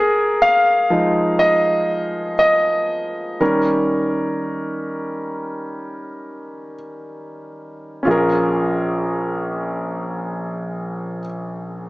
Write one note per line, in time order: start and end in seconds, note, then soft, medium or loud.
0.00 0.43 G#4 medium
0.00 3.41 A#4 medium
0.42 1.41 F5 medium
0.90 3.36 F3 soft
0.90 3.37 G#3 soft
0.90 3.37 D#4 soft
1.39 2.34 D#5 medium
2.39 3.37 D#5 medium
3.40 8.02 D#3 soft
3.40 8.02 G3 soft
3.40 8.01 C#4 soft
3.40 6.75 A#4 medium
8.03 11.21 A#1 medium
8.03 11.17 C#4 soft
8.03 11.19 F4 soft
8.08 11.22 G#4 soft
8.08 11.25 A#4 medium